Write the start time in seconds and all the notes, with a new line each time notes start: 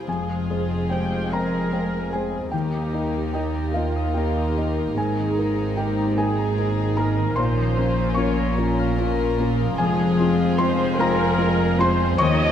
Already playing: C3 A#3 C5
0.06 F1 F2 F3 G#3 C4 F4 G#4 G#5
0.28 G#3
0.48 G#3 F4 G#4 C5
0.70 C5
0.90 G#3 G4 C5 G5
1.11 F5
1.31 G#3 C4 A#4 C5 G5 A#5 C6
1.73 G#3 C5 F5 G5
2.12 G#3 F4 G#4 C5 G#5
2.32 G3
2.51 D#2 D#3 A#3 D#4 G4 A#4 G5
2.55 A#3 D#4
2.73 D#4
2.92 A#3 D#4 D#5
3.13 G4
3.33 A#3 D#4 G4 D#5 G5
3.55 A#4
3.74 A#3 D#4 F4 D#5 F5 G5
3.96 D#6
4.14 A#3 D#4 G4 A#4 D#5 G5
4.37 D#5
4.57 A#3 D#4 D#5
4.78 D#4
4.96 G#1 G#2 C4 D#4 G#4 G#5
5.18 D#3
5.38 A#3 D#4 A#4
5.58 D#4
5.76 A#3 D#4 G4 A#4 G5
5.98 D#4
6.16 A#3 D#4 G#4 A#4 D#5 G#5
6.39 A#5
6.58 A#3 D#4 A#4
6.78 D#4
6.97 A#3 D#4 A#4 A#5
7.17 D#3
7.36 A#1 A#2 A#3 C#4 F4 C5 C6
7.57 F3
7.77 A#3 C#4 F4
7.98 C#4
8.15 A#3 C#4 F4 C#5 C#6
8.19 C#5
8.38 A#4
8.57 A#3 C#4 F4 A#4 C#5
8.79 F5
8.98 A#3 C#4 F4 A#4
9.19 F4
9.38 A#3 C#4 F4
9.60 F3
9.78 F1 F2 F3 G#3 C4 G#4 G#5
10.00 G#3
10.19 G#3 C4 F4
10.39 F4
10.58 G#3 C4 F4 C5 C6
10.78 C5
10.98 G#3 C4 F4 A#4 F5 A#5
11.19 G5
11.38 G#3 C4 F4 C5
11.79 G#3 C4 F4 C5 C6
12.00 G3
12.18 D#2 D#3 A#3 C4 D#4 C#5 D#5 C#6
12.22 G4
12.42 G3